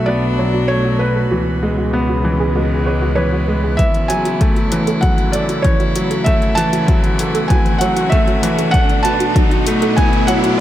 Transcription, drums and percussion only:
3.79 kick medium
3.79 closed hi-hat soft
3.94 closed hi-hat soft
4.10 closed hi-hat medium
4.25 closed hi-hat soft
4.41 kick loud
4.41 closed hi-hat soft
4.56 closed hi-hat soft
4.72 closed hi-hat medium
4.87 closed hi-hat soft
5.03 kick medium
5.03 closed hi-hat soft
5.18 closed hi-hat soft
5.33 closed hi-hat medium
5.49 closed hi-hat soft
5.64 kick medium
5.64 closed hi-hat soft
5.80 closed hi-hat soft
5.96 closed hi-hat medium
6.11 closed hi-hat soft
6.26 kick medium
6.26 closed hi-hat soft
6.42 closed hi-hat soft
6.58 closed hi-hat medium
6.73 closed hi-hat soft
6.88 kick loud
6.88 closed hi-hat soft
7.04 closed hi-hat soft
7.19 closed hi-hat medium
7.35 closed hi-hat soft
7.50 kick loud
7.50 closed hi-hat soft
7.66 closed hi-hat soft
7.81 closed hi-hat medium
7.97 closed hi-hat soft
8.12 kick loud
8.12 closed hi-hat soft
8.28 closed hi-hat soft
8.43 closed hi-hat medium
8.59 closed hi-hat soft
8.74 kick loud
8.74 closed hi-hat soft
8.89 closed hi-hat soft
9.05 closed hi-hat medium
9.20 closed hi-hat soft
9.36 kick loud
9.36 closed hi-hat soft
9.51 closed hi-hat soft
9.67 closed hi-hat medium
9.82 closed hi-hat soft
9.98 kick loud
9.98 closed hi-hat soft
10.13 closed hi-hat soft
10.28 closed hi-hat medium
10.44 closed hi-hat soft

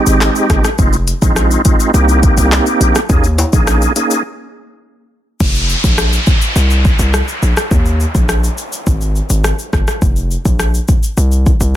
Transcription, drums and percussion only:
0.06 maracas medium
0.06 shaker medium
0.21 cross-stick loud
0.21 clap loud
0.21 maracas medium
0.21 shaker medium
0.35 maracas medium
0.35 shaker medium
0.50 kick medium
0.50 cross-stick loud
0.50 closed hi-hat medium
0.50 shaker soft
0.64 cross-stick medium
0.64 maracas medium
0.64 shaker medium
0.78 kick loud
0.78 maracas medium
0.78 shaker medium
0.93 maracas medium
0.93 shaker soft
1.07 closed hi-hat medium
1.07 maracas medium
1.07 shaker medium
1.22 kick medium
1.22 maracas medium
1.22 shaker medium
1.36 cross-stick medium
1.36 shaker medium
1.36 maracas medium
1.51 maracas medium
1.51 shaker medium
1.65 kick medium
1.65 closed hi-hat medium
1.65 shaker medium
1.65 maracas medium
1.80 shaker medium
1.80 maracas medium
1.94 shaker medium
1.94 maracas medium
2.09 shaker medium
2.09 maracas soft
2.23 kick medium
2.23 closed hi-hat medium
2.23 maracas soft
2.23 shaker soft
2.37 maracas medium
2.37 shaker medium
2.52 cross-stick medium
2.52 clap loud
2.52 maracas medium
2.52 shaker medium
2.66 maracas medium
2.66 shaker medium
2.81 closed hi-hat medium
2.81 shaker soft
2.95 cross-stick medium
2.95 maracas medium
2.95 shaker medium
3.09 kick loud
3.09 maracas medium
3.09 shaker medium
3.24 maracas medium
3.24 shaker soft
3.38 closed hi-hat medium
3.38 high timbale medium
3.38 maracas medium
3.38 shaker medium
3.53 kick loud
3.53 maracas medium
3.53 shaker medium
3.67 cross-stick medium
3.67 maracas medium
3.67 shaker medium
3.81 maracas medium
3.81 shaker medium
3.96 closed hi-hat medium
3.96 maracas medium
3.96 shaker medium
4.11 maracas medium
4.11 shaker medium
5.40 kick loud
5.40 crash medium
5.40 shaker medium
5.55 shaker soft
5.69 shaker medium
5.84 kick medium
5.84 shaker medium
5.98 cross-stick medium
5.98 shaker medium
6.13 shaker medium
6.27 kick medium
6.27 shaker medium
6.42 shaker medium
6.56 shaker medium
6.70 shaker soft
6.85 kick loud
6.85 shaker soft
6.99 shaker medium
7.14 cross-stick medium
7.14 shaker medium
7.28 shaker medium
7.42 shaker soft
7.57 cross-stick medium
7.57 shaker medium
7.71 kick loud
7.71 shaker medium
7.86 shaker soft
8.00 shaker medium
8.15 kick medium
8.15 shaker medium
8.29 cross-stick medium
8.29 shaker medium
8.44 shaker medium
8.58 shaker medium
8.72 shaker medium
8.87 kick medium
8.87 shaker medium
9.01 shaker soft
9.16 shaker soft
9.30 shaker medium
9.44 cross-stick medium
9.44 shaker medium
9.59 shaker medium
9.73 kick loud
9.73 cross-stick medium
9.73 shaker soft
9.87 cross-stick medium
9.87 shaker medium
10.02 kick loud
10.02 shaker medium
10.16 shaker soft
10.31 shaker medium
10.45 kick medium
10.45 shaker medium
10.59 cross-stick medium
10.59 shaker medium
10.74 shaker medium
10.88 kick medium
10.88 shaker medium
11.03 shaker medium
11.17 shaker medium
11.32 shaker soft
11.46 kick medium
11.46 shaker soft
11.60 shaker medium

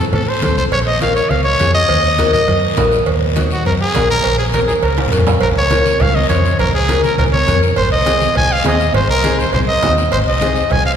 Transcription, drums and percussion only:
0.13 cowbell medium
0.13 high conga medium
0.13 long guiro medium
0.42 cowbell medium
0.42 high conga medium
0.42 low conga medium
0.42 short guiro medium
0.57 short guiro medium
0.72 cowbell loud
0.72 long guiro medium
1.01 cowbell medium
1.01 high conga medium
1.01 short guiro medium
1.16 short guiro medium
1.31 cowbell medium
1.31 high conga medium
1.31 long guiro medium
1.59 cowbell medium
1.59 high conga medium
1.59 short guiro medium
1.74 short guiro medium
1.89 cowbell loud
1.89 long guiro medium
2.18 cowbell medium
2.18 high conga medium
2.18 short guiro medium
2.33 low conga medium
2.33 short guiro medium
2.48 cowbell medium
2.48 high conga medium
2.48 long guiro medium
2.77 cowbell medium
2.77 high conga medium
2.77 low conga medium
2.77 low timbale medium
2.77 short guiro medium
2.92 short guiro medium
3.06 cowbell loud
3.06 long guiro medium
3.36 cowbell medium
3.36 high conga medium
3.36 short guiro medium
3.51 short guiro medium
3.65 cowbell medium
3.65 high conga medium
3.65 long guiro medium
3.95 cowbell medium
3.95 high conga medium
3.95 low timbale medium
3.95 short guiro medium
4.10 short guiro medium
4.24 cowbell loud
4.24 long guiro medium
4.54 cowbell medium
4.54 high conga medium
4.54 short guiro medium
4.68 low conga medium
4.68 short guiro medium
4.83 cowbell medium
4.83 long guiro medium
4.98 high conga medium
4.98 high timbale medium
5.08 low conga medium
5.12 cowbell medium
5.12 short guiro medium
5.17 low conga medium
5.27 low conga medium
5.27 low timbale loud
5.27 short guiro medium
5.41 cowbell loud
5.41 high conga soft
5.41 long guiro medium
5.71 cowbell medium
5.71 high conga medium
5.71 short guiro medium
5.86 high conga medium
5.86 short guiro medium
6.00 cowbell medium
6.00 high conga soft
6.00 low conga medium
6.00 long guiro medium
6.16 high conga medium
6.30 cowbell medium
6.30 high conga medium
6.30 short guiro medium
6.45 short guiro medium
6.59 cowbell loud
6.59 high conga soft
6.59 low conga medium
6.59 long guiro medium
6.89 cowbell medium
6.89 high conga medium
6.89 short guiro medium
7.04 high conga medium
7.04 short guiro medium
7.18 cowbell medium
7.18 high conga soft
7.18 low conga medium
7.18 long guiro medium
7.34 high conga medium
7.48 cowbell medium
7.48 high conga medium
7.48 low conga medium
7.48 short guiro medium
7.63 short guiro medium
7.76 cowbell loud
7.76 high conga soft
7.76 long guiro medium
8.06 cowbell medium
8.06 high conga medium
8.06 short guiro medium
8.21 high conga medium
8.21 short guiro medium
8.35 cowbell medium
8.35 high conga soft
8.35 low conga medium
8.35 long guiro medium
8.64 cowbell medium
8.64 high conga medium
8.64 low timbale medium
8.64 short guiro medium
8.80 short guiro medium
8.94 cowbell loud
8.94 high conga soft
8.94 low conga medium
8.94 long guiro medium
9.24 cowbell medium
9.24 high conga medium
9.24 short guiro medium
9.39 short guiro medium
9.53 cowbell medium
9.53 high conga soft
9.53 low conga medium
9.53 long guiro medium
9.83 cowbell medium
9.83 high conga medium
9.83 low conga medium
9.83 low timbale medium
9.83 short guiro medium
9.98 short guiro medium
10.12 cowbell loud
10.12 high conga soft
10.12 long guiro medium
10.41 cowbell medium
10.41 high conga medium
10.41 short guiro medium
10.56 short guiro medium
10.70 cowbell medium
10.70 high conga soft
10.70 low conga medium
10.70 long guiro medium

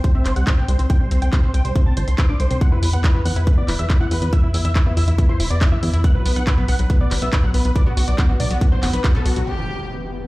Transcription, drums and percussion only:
0.04 kick loud
0.04 closed hi-hat medium
0.26 clap medium
0.26 closed hi-hat medium
0.36 closed hi-hat medium
0.47 kick loud
0.47 clap loud
0.47 closed hi-hat medium
0.68 closed hi-hat medium
0.79 closed hi-hat medium
0.90 kick loud
0.90 closed hi-hat medium
1.11 closed hi-hat medium
1.22 closed hi-hat medium
1.33 kick loud
1.33 clap loud
1.33 closed hi-hat medium
1.54 closed hi-hat medium
1.65 closed hi-hat medium
1.76 kick loud
1.76 closed hi-hat medium
1.97 closed hi-hat medium
2.08 closed hi-hat medium
2.18 kick loud
2.18 clap loud
2.18 closed hi-hat medium
2.40 closed hi-hat medium
2.51 closed hi-hat medium
2.61 kick loud
2.61 closed hi-hat medium
2.83 open hi-hat loud
2.93 closed hi-hat medium
3.04 kick loud
3.04 clap loud
3.04 closed hi-hat medium
3.26 open hi-hat loud
3.36 closed hi-hat medium
3.47 kick loud
3.47 closed hi-hat medium
3.68 clap medium
3.68 open hi-hat medium
3.79 closed hi-hat medium
3.90 kick loud
3.90 clap loud
3.90 closed hi-hat medium
4.11 open hi-hat loud
4.22 closed hi-hat medium
4.33 kick loud
4.33 closed hi-hat medium
4.54 open hi-hat loud
4.65 closed hi-hat medium
4.76 kick loud
4.76 clap loud
4.76 closed hi-hat medium
4.97 open hi-hat loud
5.08 closed hi-hat medium
5.18 kick loud
5.18 closed hi-hat medium
5.40 open hi-hat medium
5.61 kick loud
5.61 clap loud
5.61 closed hi-hat medium
5.83 open hi-hat medium
5.94 closed hi-hat medium
6.04 kick loud
6.04 closed hi-hat medium
6.26 open hi-hat loud
6.36 closed hi-hat medium
6.47 kick loud
6.47 clap loud
6.47 closed hi-hat medium
6.68 open hi-hat loud
6.79 closed hi-hat medium
6.90 kick loud
6.90 closed hi-hat medium
7.11 clap medium
7.11 open hi-hat loud
7.22 closed hi-hat medium
7.33 kick loud
7.33 clap loud
7.33 closed hi-hat medium
7.54 open hi-hat loud
7.65 closed hi-hat medium
7.76 kick loud
7.76 closed hi-hat medium
7.97 open hi-hat loud
8.08 closed hi-hat medium
8.18 kick loud
8.18 clap loud
8.18 closed hi-hat medium
8.40 open hi-hat loud
8.51 closed hi-hat medium
8.61 kick loud
8.61 closed hi-hat medium
8.83 clap medium
8.83 open hi-hat medium
8.93 closed hi-hat medium
9.04 kick loud
9.04 clap loud
9.04 closed hi-hat medium
9.26 open hi-hat loud
9.36 closed hi-hat medium

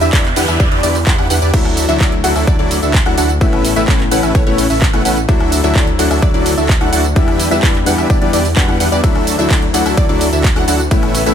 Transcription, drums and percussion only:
0.01 closed hi-hat soft
0.01 tambourine soft
0.13 kick loud
0.13 clap loud
0.13 closed hi-hat medium
0.13 tambourine soft
0.25 clap soft
0.25 closed hi-hat soft
0.36 open hi-hat loud
0.36 tambourine medium
0.48 closed hi-hat soft
0.48 tambourine soft
0.48 high woodblock medium
0.60 kick loud
0.60 closed hi-hat medium
0.60 tambourine soft
0.72 closed hi-hat soft
0.83 open hi-hat loud
0.83 tambourine medium
0.95 open hi-hat medium
0.95 tambourine soft
1.07 kick loud
1.07 clap loud
1.07 closed hi-hat medium
1.07 tambourine soft
1.19 closed hi-hat soft
1.19 high woodblock medium
1.30 open hi-hat loud
1.30 tambourine medium
1.42 closed hi-hat soft
1.42 tambourine soft
1.54 kick loud
1.54 closed hi-hat medium
1.54 tambourine soft
1.54 crash medium
1.65 closed hi-hat soft
1.65 high woodblock medium
1.77 open hi-hat loud
1.77 tambourine medium
1.89 closed hi-hat soft
1.89 tambourine soft
2.00 kick loud
2.00 clap loud
2.00 closed hi-hat medium
2.00 tambourine soft
2.12 closed hi-hat soft
2.24 open hi-hat loud
2.24 tambourine medium
2.36 open hi-hat medium
2.36 tambourine soft
2.36 high woodblock medium
2.47 kick loud
2.47 closed hi-hat medium
2.47 tambourine soft
2.59 closed hi-hat soft
2.71 open hi-hat loud
2.71 tambourine medium
2.83 closed hi-hat soft
2.83 tambourine soft
2.94 kick loud
2.94 clap loud
2.94 closed hi-hat medium
2.94 tambourine soft
3.06 closed hi-hat soft
3.06 high woodblock medium
3.18 open hi-hat loud
3.18 tambourine medium
3.29 closed hi-hat soft
3.29 tambourine soft
3.41 kick loud
3.41 closed hi-hat medium
3.41 tambourine soft
3.53 closed hi-hat soft
3.53 high woodblock medium
3.65 open hi-hat loud
3.65 tambourine medium
3.76 closed hi-hat soft
3.76 tambourine soft
3.88 kick loud
3.88 clap loud
3.88 closed hi-hat medium
3.88 tambourine soft
4.00 clap soft
4.00 closed hi-hat soft
4.11 open hi-hat loud
4.11 tambourine medium
4.23 closed hi-hat soft
4.23 tambourine soft
4.23 high woodblock medium
4.35 kick loud
4.35 closed hi-hat medium
4.35 tambourine soft
4.47 closed hi-hat soft
4.58 open hi-hat loud
4.58 tambourine medium
4.70 open hi-hat medium
4.70 tambourine soft
4.82 kick loud
4.82 clap loud
4.82 closed hi-hat medium
4.82 tambourine soft
4.93 closed hi-hat soft
4.93 high woodblock medium
5.05 open hi-hat loud
5.05 tambourine medium
5.17 closed hi-hat soft
5.17 tambourine soft
5.29 kick loud
5.29 closed hi-hat medium
5.29 tambourine soft
5.40 closed hi-hat soft
5.40 high woodblock medium
5.52 open hi-hat loud
5.52 tambourine medium
5.64 closed hi-hat soft
5.64 tambourine soft
5.76 kick loud
5.76 clap loud
5.76 closed hi-hat medium
5.76 tambourine soft
5.87 closed hi-hat soft
5.99 open hi-hat loud
5.99 tambourine medium
6.11 open hi-hat medium
6.11 tambourine soft
6.11 high woodblock medium
6.22 kick loud
6.22 closed hi-hat medium
6.22 tambourine soft
6.34 closed hi-hat soft
6.46 open hi-hat loud
6.46 tambourine medium
6.58 closed hi-hat soft
6.58 tambourine soft
6.69 kick loud
6.69 clap loud
6.69 closed hi-hat medium
6.69 tambourine soft
6.81 closed hi-hat soft
6.81 high woodblock medium
6.93 open hi-hat loud
6.93 tambourine medium
7.04 closed hi-hat soft
7.04 tambourine soft
7.16 kick loud
7.16 closed hi-hat medium
7.16 tambourine soft
7.28 closed hi-hat soft
7.28 high woodblock medium
7.40 open hi-hat loud
7.40 tambourine medium
7.51 closed hi-hat soft
7.51 tambourine soft
7.63 kick loud
7.63 clap loud
7.63 closed hi-hat medium
7.63 tambourine soft
7.75 clap soft
7.75 closed hi-hat soft
7.86 open hi-hat loud
7.86 tambourine medium
7.98 closed hi-hat soft
7.98 tambourine soft
7.98 high woodblock medium
8.10 kick loud
8.10 closed hi-hat medium
8.10 tambourine soft
8.22 closed hi-hat soft
8.33 open hi-hat loud
8.33 tambourine medium
8.45 open hi-hat medium
8.45 tambourine soft
8.57 kick loud
8.57 clap loud
8.57 closed hi-hat medium
8.57 tambourine soft
8.68 closed hi-hat soft
8.68 high woodblock medium
8.80 open hi-hat loud
8.80 tambourine medium
8.92 tambourine soft
9.04 kick loud
9.04 closed hi-hat medium
9.04 ride medium
9.04 tambourine soft
9.15 closed hi-hat soft
9.15 high woodblock medium
9.27 open hi-hat loud
9.27 tambourine medium
9.39 closed hi-hat soft
9.39 tambourine soft
9.51 kick loud
9.51 clap loud
9.51 closed hi-hat medium
9.51 ride medium
9.51 tambourine soft
9.62 closed hi-hat soft
9.74 open hi-hat loud
9.74 tambourine medium
9.86 open hi-hat medium
9.86 tambourine soft
9.86 high woodblock medium
9.97 kick loud
9.97 closed hi-hat medium
9.97 ride medium
9.97 tambourine soft
10.09 closed hi-hat soft
10.21 open hi-hat loud
10.21 tambourine medium
10.33 closed hi-hat soft
10.33 tambourine soft
10.44 kick loud
10.44 clap loud
10.44 closed hi-hat medium
10.44 ride medium
10.44 tambourine soft
10.56 closed hi-hat soft
10.56 high woodblock medium
10.68 open hi-hat loud
10.68 tambourine medium
10.79 closed hi-hat soft
10.79 tambourine soft
10.91 kick loud
10.91 closed hi-hat medium
10.91 ride medium
10.91 tambourine soft
11.03 closed hi-hat soft
11.03 high woodblock medium
11.15 open hi-hat loud
11.15 tambourine medium
11.26 closed hi-hat soft
11.26 tambourine soft

